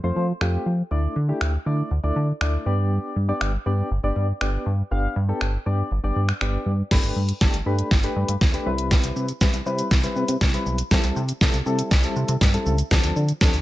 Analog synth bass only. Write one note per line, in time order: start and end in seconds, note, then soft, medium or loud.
0.04 0.12 F2 medium
0.16 0.32 F3 loud
0.41 0.57 F2 loud
0.66 0.82 F3 loud
0.91 1.07 D2 loud
1.16 1.32 D3 loud
1.41 1.57 D2 medium
1.66 1.83 D3 loud
1.91 1.99 D2 medium
2.04 2.12 D2 medium
2.16 2.32 D3 loud
2.41 2.57 D2 loud
2.66 2.99 G2 medium
3.16 3.32 G2 loud
3.41 3.57 G1 loud
3.66 3.82 G2 medium
3.91 3.99 G1 loud
4.04 4.12 G1 loud
4.16 4.32 G2 loud
4.41 4.57 G1 loud
4.66 4.82 G2 loud
4.91 5.08 G1 loud
5.16 5.32 G2 loud
5.41 5.57 G1 loud
5.66 5.82 G2 loud
5.91 5.99 G1 loud
6.04 6.12 G1 medium
6.16 6.32 G2 loud
6.41 6.57 G1 medium
6.66 6.82 G2 medium
6.91 6.99 G1 loud
7.04 7.12 G1 medium
7.16 7.32 G2 loud
7.41 7.49 G1 loud
7.54 7.62 G1 loud
7.66 7.82 G2 loud
7.91 8.07 G1 loud
8.16 8.24 G2 loud
8.29 8.37 G2 medium
8.41 8.57 D2 medium
8.66 8.91 C2 loud
9.04 9.12 C2 loud
9.16 9.32 C3 loud
9.41 9.49 C2 medium
9.54 9.62 C2 medium
9.66 9.82 C3 loud
9.91 10.07 C2 loud
10.16 10.24 C3 medium
10.29 10.37 C3 medium
10.41 10.57 C2 medium
10.66 10.82 B1 medium
10.91 10.99 C2 loud
11.04 11.12 C2 loud
11.16 11.33 C3 loud
11.41 11.49 C2 loud
11.54 11.62 C2 loud
11.66 11.82 C3 loud
11.91 12.07 C2 loud
12.16 12.24 C3 medium
12.29 12.37 C3 loud
12.41 12.57 G2 medium
12.66 12.82 C#2 medium
12.91 12.99 D2 loud
13.04 13.12 D2 loud
13.16 13.32 D3 loud
13.41 13.49 D2 medium
13.54 13.62 D2 medium